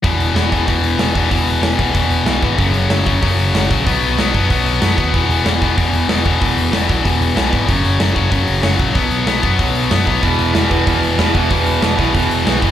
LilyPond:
<<
  \new Staff \with { instrumentName = "Distorted electric guitar" } { \clef bass \time 4/4 \key fis \mixolydian \tempo 4 = 188 <e, b, e>4 <e, b, e>8 <e, b, e>8 <e, b, e>4 <e, b, e>8 <e, b, e>8 | <e, b, e>4 <e, b, e>8 <e, b, e>8 <e, b, e>4 <e, b, e>8 <e, b, e>8 | <fis, cis fis>4 <fis, cis fis>8 <fis, cis fis>8 <fis, cis fis>4 <fis, cis fis>8 <fis, cis fis>8 | <b, fis b>4 <b, fis b>8 <b, fis b>8 <b, fis b>4 <b, fis b>8 <b, fis b>8 |
<e, b, e>4 <e, b, e>8 <e, b, e>8 <e, b, e>4 <e, b, e>8 <e, b, e>8 | <e, b, e>4 <e, b, e>8 <e, b, e>8 <e, b, e>4 <e, b, e>8 <e, b, e>8 | <fis, cis fis>4 <fis, cis fis>8 <fis, cis fis>8 <fis, cis fis>4 <fis, cis fis>8 <fis, cis fis>8 | <b, fis b>4 <b, fis b>8 <b, fis b>8 <b, fis b>4 <b, fis b>8 <b, fis b>8 |
<e, b, e>4 <e, b, e>8 <e, b, e>8 <e, b, e>4 <e, b, e>8 <e, b, e>8 | <e, b, e>4 <e, b, e>8 <e, b, e>8 <e, b, e>4 <e, b, e>8 <e, b, e>8 | }
  \new Staff \with { instrumentName = "Overdriven electric guitar" } { \clef bass \time 4/4 \key fis \mixolydian r1 | r1 | r1 | r1 |
r1 | r1 | r1 | r1 |
<e, b, e>4 <e, b, e>8 <e, b, e>8 <e, b, e>4 <e, b, e>8 <e, b, e>8 | <e, b, e>4 <e, b, e>8 <e, b, e>8 <e, b, e>4 <e, b, e>8 <e, b, e>8 | }
  \new Staff \with { instrumentName = "Picked electric bass" } { \clef bass \time 4/4 \key fis \mixolydian e,,8 e,,8 e,,8 e,,8 e,8 e,,8 e,,8 e,,8 | e,,8 e,,8 e,,8 b,,8 e,,8 e,,8 b,,8 gis,,8 | fis,,8 fis,,8 fis,,8 fis,,8 fis,8 fis,,8 fis,,8 ais,,8 | b,,8 b,,8 b,,8 fis,8 b,,8 b,,8 fis,8 dis,8 |
e,,8 e,,8 e,,8 e,,8 e,8 e,,8 e,,8 e,,8 | e,,8 e,,8 e,,8 b,,8 e,,8 e,,8 b,,8 gis,,8 | fis,,8 fis,,8 fis,,8 fis,,8 fis,8 fis,,8 fis,,8 ais,,8 | b,,8 b,,8 b,,8 fis,8 b,,8 b,,8 fis,8 b,,8 |
e,,8 e,,8 e,,8 e,,8 e,8 e,,8 e,,8 e,,8 | e,,8 e,,8 e,,8 b,,8 e,,8 e,,8 b,,8 f,,8 | }
  \new DrumStaff \with { instrumentName = "Drums" } \drummode { \time 4/4 <hho bd>8 hho8 <hho sn>8 <hho bd>8 <hho bd>8 hho8 <hho sn>8 <hho bd>8 | <hho bd>8 hho8 <hho sn>8 <hho bd>8 <hho bd>8 hho8 <hho sn>8 <hho bd>8 | <hho bd>8 hho8 <hho sn>8 <hho bd>8 <hho bd>8 hho8 <hho sn>8 <hho bd>8 | <hho bd>8 hho8 <hho sn>8 <hho bd>8 <hho bd>8 hho8 <hho sn>8 <hho bd>8 |
<hho bd>8 hho8 <hho sn>8 <hho bd>8 <hho bd>8 hho8 <hho sn>8 <hho bd>8 | <hho bd>8 hho8 <hho sn>8 <hho bd>8 <hho bd>8 hho8 <hho sn>8 <hho bd>8 | <hho bd>8 hho8 <hho sn>8 <hho bd>8 <hho bd>8 hho8 <hho sn>8 <hho bd>8 | <hho bd>8 hho8 <hho sn>8 <hho bd>8 <hho bd>8 hho8 <hho sn>8 <hho bd>8 |
<hho bd>8 hho8 <hho sn>8 <hho bd>8 <hho bd>8 hho8 <hho sn>8 <hho bd>8 | <hho bd>8 hho8 <hho sn>8 <hho bd>8 <hho bd>8 hho8 <hho sn>8 <hho bd>8 | }
>>